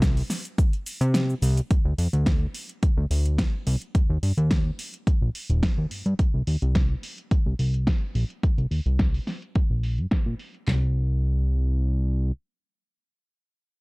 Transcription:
Already playing: C2
0.02 kick, snare, closed hi-hat, shaker
0.17 open hi-hat
0.30 snare, open hi-hat, shaker
0.45 closed hi-hat, shaker
0.58 kick, closed hi-hat, shaker
0.73 closed hi-hat
0.86 open hi-hat, shaker
1.01 C3, closed hi-hat, shaker
1.14 snare, closed hi-hat, shaker
1.30 shaker
1.42 C2, open hi-hat, shaker
1.57 closed hi-hat, shaker
1.71 D2, kick, closed hi-hat
1.85 D2
1.98 F2, open hi-hat
2.13 D2, closed hi-hat
2.26 kick, snare, closed hi-hat
2.54 open hi-hat
2.69 closed hi-hat
2.83 D2, kick, closed hi-hat
2.97 D2
3.11 D2, open hi-hat
3.26 closed hi-hat
3.38 kick, snare, closed hi-hat
3.67 C2, open hi-hat
3.82 closed hi-hat
3.95 D#2, kick, closed hi-hat
4.10 D#2
4.23 G2, open hi-hat
4.37 D#2, closed hi-hat
4.51 kick, snare, closed hi-hat
4.79 open hi-hat
4.94 closed hi-hat
5.07 kick, closed hi-hat
5.22 A#1
5.35 open hi-hat
5.50 D#1, closed hi-hat
5.63 kick, snare, closed hi-hat
5.78 D#2
5.91 G2, open hi-hat
6.06 G2, closed hi-hat
6.19 C2, kick, closed hi-hat
6.34 C2
6.47 D#2, open hi-hat
6.62 C2, closed hi-hat
6.75 kick, snare, closed hi-hat
7.03 open hi-hat
7.18 closed hi-hat
7.31 C2, kick, closed hi-hat
7.46 C2
7.59 C2, open hi-hat
7.74 closed hi-hat
7.87 kick, snare, closed hi-hat
8.15 A#1, open hi-hat
8.30 closed hi-hat
8.43 C2, kick, closed hi-hat
8.58 C2, closed hi-hat
8.71 D#2, open hi-hat
8.86 C2, closed hi-hat
8.99 kick, snare, closed hi-hat
9.14 open hi-hat
9.27 snare, open hi-hat
9.42 closed hi-hat
9.55 kick, closed hi-hat
9.70 A#1
9.83 open hi-hat
9.98 G2, closed hi-hat
10.11 kick, snare, closed hi-hat
10.26 A#2
10.39 open hi-hat
10.54 closed hi-hat
10.67 C2, snare, clap, floor tom

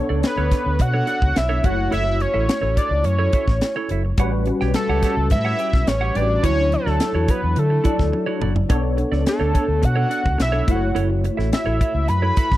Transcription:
Already playing: B3 D4 A4 C#5
0.09 C#2 D4 A4 D5
0.23 B4, snare, closed hi-hat
0.37 D2 D4 A4 C#5
0.51 D4 A4 C#5, kick, snare, closed hi-hat
0.66 D2
0.79 B2 F#5, muted clean electric guitar stroke, kick, closed hi-hat
0.94 D4 A4 C#5
1.07 D4 A4 D5, closed hi-hat
1.22 C#2, kick
1.35 B1 E5, muted clean electric guitar stroke, snare, closed hi-hat
1.49 D4 A4 C#5
1.62 F#1 A3 E4 F#4 A4 C#5 E5 F#5, kick, closed hi-hat
1.77 muted clean electric guitar stroke
1.91 F#1 E4 A4 C#5 E5, closed hi-hat
2.05 muted clean electric guitar stroke
2.20 C#5, muted clean electric guitar stroke, closed hi-hat
2.34 A1 E4 A4 E5
2.49 snare, closed hi-hat
2.62 A1 E4 A4 C#5
2.76 E4 A4 C#5 D5, kick, closed hi-hat
2.90 C#2, muted clean electric guitar stroke
3.04 F#2 C#5, muted clean electric guitar stroke, closed hi-hat
3.19 E4 A4 C#5
3.33 E4 A4 E5, kick, closed hi-hat
3.48 A1, kick, snare
3.61 muted clean electric guitar stroke, snare, closed hi-hat
3.76 E4 A4 C#5
3.89 F#1 E4 A4 E5, closed hi-hat
4.05 muted clean electric guitar stroke
4.18 A1 G3 C#4 F#4 G4 B4 C#5 F#5, kick, closed hi-hat
4.33 muted clean electric guitar stroke
4.46 muted clean electric guitar stroke, closed hi-hat
4.60 B1 G4 C#5 G5, snare
4.74 A4, snare, closed hi-hat
4.89 C#2 G4 C#5 F#5
5.02 G4 C#5 F#5, kick, snare, closed hi-hat
5.17 C#2, muted clean electric guitar stroke
5.30 A2 E5, muted clean electric guitar stroke, kick, closed hi-hat
5.45 G4 C#5 F#5
5.59 G4 C#5 G5, closed hi-hat
5.73 B1, muted clean electric guitar stroke, kick, snare
5.87 A1 C#5, muted clean electric guitar stroke, snare, closed hi-hat
6.01 G4 C#5 F#5
6.15 A1 G3 C#4 F#4 G4 B4 C#5 D5 G5, closed hi-hat
6.30 muted clean electric guitar stroke
6.42 D2 E3 D4 E4 F#4 C#5, kick, closed hi-hat
6.49 F#3
6.58 muted clean electric guitar stroke
6.72 A4, muted clean electric guitar stroke, closed hi-hat
6.86 D2 E4 F#4 D5, snare
7.00 muted clean electric guitar stroke, snare, closed hi-hat
7.15 E2 E4 F#4 C#5
7.28 E4 F#4 B4 C#5, kick, closed hi-hat
7.44 E2
7.56 D3 A4, muted clean electric guitar stroke, closed hi-hat
7.70 muted clean electric guitar stroke
7.84 F#3 D4 E4 F#4 D5, kick, closed hi-hat
7.99 D2, kick, snare
8.12 muted clean electric guitar stroke, high tom
8.26 E4 F#4 C#5
8.40 F#1 E4 F#4 D5, mid tom
8.56 muted clean electric guitar stroke, floor tom
8.69 B1 B3 D4 A4 C#5, kick, closed hi-hat
8.84 muted clean electric guitar stroke
8.97 muted clean electric guitar stroke, closed hi-hat
9.12 C#2 D4 A4 D5, snare
9.26 A4, muted clean electric guitar stroke, snare, closed hi-hat
9.40 D2 D4 A4 C#5
9.54 D4 A4 C#5, kick, closed hi-hat
9.68 D2
9.82 B2 F#5, muted clean electric guitar stroke, kick, closed hi-hat
9.96 D4 A4 C#5
10.09 D4 A4 D5, closed hi-hat
10.24 C#2, muted clean electric guitar stroke, kick
10.38 B1 E5, muted clean electric guitar stroke, snare, closed hi-hat
10.52 D4 A4 C#5
10.66 F#1 A3 E4 F#4 A4 C5 E5, kick, closed hi-hat
10.71 F#5
10.75 C#5
10.95 F#1 E4 A4 C#5, closed hi-hat
11.10 muted clean electric guitar stroke
11.24 muted clean electric guitar stroke, closed hi-hat
11.37 A1 E4 A4 E5, snare
11.52 E5, muted clean electric guitar stroke, snare, closed hi-hat
11.66 A1 E4 A4 C#5
11.80 E4 A4 C#5, kick, closed hi-hat
11.94 C#2, muted clean electric guitar stroke
12.08 F#2 B5, muted clean electric guitar stroke, closed hi-hat
12.22 E4 A4 C#5
12.37 E4 A4 E5, kick, closed hi-hat
12.52 A1, kick, snare

